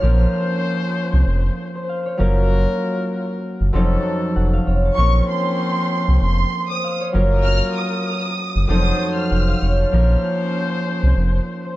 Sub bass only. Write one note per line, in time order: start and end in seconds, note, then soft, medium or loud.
0.03 0.27 A#1 loud
1.13 1.24 C2 medium
1.27 1.50 F1 loud
2.20 2.67 F#1 loud
3.61 3.71 F#1 medium
3.74 3.98 F1 loud
4.36 4.60 F1 medium
4.67 4.91 F1 loud
4.98 5.21 A#1 loud
6.08 6.18 C2 medium
6.22 6.45 F1 loud
7.15 7.61 F#1 loud
8.56 8.66 F#1 medium
8.69 8.93 F1 loud
9.31 9.55 F1 loud
9.62 9.85 F1 loud
9.93 10.16 A#1 loud
11.03 11.13 C2 medium
11.17 11.40 F1 loud